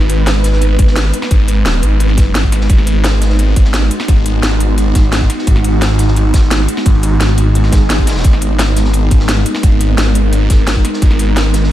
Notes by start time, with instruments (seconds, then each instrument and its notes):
Already playing: detuned saw bass G#1, synth drone G#3 B3 D#4 B4
0.01 snare
0.09 closed hi-hat, ride
0.27 snare, closed hi-hat, ride
0.36 snare
0.44 snare, closed hi-hat, ride
0.53 snare
0.62 closed hi-hat, ride
0.79 detuned saw bass G#1, kick, closed hi-hat, ride
0.87 snare
0.96 snare, closed hi-hat, ride
1.05 snare
1.14 closed hi-hat, ride
1.22 snare
1.31 detuned saw bass G#1, kick, closed hi-hat, ride
1.40 ride
1.48 closed hi-hat, ride
1.66 detuned saw bass D#1, snare, closed hi-hat, ride
1.74 snare
1.83 detuned saw bass G#1, closed hi-hat, ride
2.00 closed hi-hat, ride
2.09 snare
2.17 kick, snare, closed hi-hat, ride
2.26 ride
2.35 detuned saw bass G#1, snare, closed hi-hat, ride
2.44 kick
2.52 snare, closed hi-hat, ride
2.61 snare
2.70 detuned saw bass G#1, synth drone F#4, kick, closed hi-hat, ride
2.78 snare
2.87 closed hi-hat, ride
3.04 snare, closed hi-hat, ride
3.13 snare
3.22 snare, closed hi-hat, ride
3.30 snare
3.39 closed hi-hat, ride
3.56 detuned saw bass G#1, kick, closed hi-hat, ride
3.65 snare
3.74 snare, closed hi-hat, ride
3.82 snare
3.91 closed hi-hat, ride
4.00 snare
4.08 detuned saw bass G#1, kick, closed hi-hat, ride
4.16 ride
4.25 closed hi-hat, ride
4.43 detuned saw bass G#1, snare, closed hi-hat, ride
4.52 snare
4.60 closed hi-hat, ride
4.78 closed hi-hat, ride
4.95 detuned saw bass G#1, kick, snare, closed hi-hat, ride
5.04 ride
5.12 snare, closed hi-hat, ride
5.21 kick
5.30 snare, closed hi-hat, ride
5.39 snare
5.47 detuned saw bass G#1, kick, closed hi-hat, ride
5.56 snare
5.64 closed hi-hat, ride
5.81 snare, closed hi-hat, ride
5.90 snare
5.99 snare, closed hi-hat, ride
6.08 snare
6.16 closed hi-hat, ride
6.34 detuned saw bass G#1, kick, snare, closed hi-hat, ride
6.42 snare
6.51 snare, closed hi-hat, ride
6.59 snare
6.68 closed hi-hat, ride
6.77 snare
6.86 detuned saw bass G#1, kick, closed hi-hat, ride
6.95 ride
7.03 closed hi-hat, ride
7.21 detuned saw bass G#1, snare, closed hi-hat, ride
7.29 snare
7.37 detuned saw bass G#1, closed hi-hat, ride
7.55 closed hi-hat, ride, swell
7.63 snare
7.72 detuned saw bass G#1, kick, snare, closed hi-hat, ride
7.90 detuned saw bass G#1, snare, closed hi-hat, ride
7.99 kick
8.07 snare, closed hi-hat, ride
8.11 snare, ride
8.16 snare, ride
8.20 snare, ride
8.24 detuned saw bass G#1, synth drone A#4, kick, closed hi-hat, ride
8.33 snare
8.41 closed hi-hat, ride
8.59 snare, closed hi-hat, ride
8.68 snare
8.76 snare, closed hi-hat, ride
8.85 snare
8.93 closed hi-hat, ride
9.11 detuned saw bass G#1, kick, closed hi-hat, ride
9.20 snare
9.28 snare, closed hi-hat, ride
9.37 snare
9.46 closed hi-hat, ride
9.55 snare
9.63 detuned saw bass G#1, kick, closed hi-hat, ride
9.72 ride
9.81 closed hi-hat, ride
9.98 detuned saw bass G#1, snare, closed hi-hat, ride
10.07 snare
10.15 closed hi-hat, ride
10.33 closed hi-hat, ride
10.50 detuned saw bass G#1, kick, snare, closed hi-hat, ride
10.59 ride
10.67 snare, closed hi-hat, ride
10.76 kick
10.85 snare, closed hi-hat, ride
10.94 snare
11.02 detuned saw bass G#1, kick, closed hi-hat, ride
11.11 snare
11.19 closed hi-hat, ride
11.37 snare, closed hi-hat, ride
11.45 snare
11.54 snare, closed hi-hat, ride
11.64 snare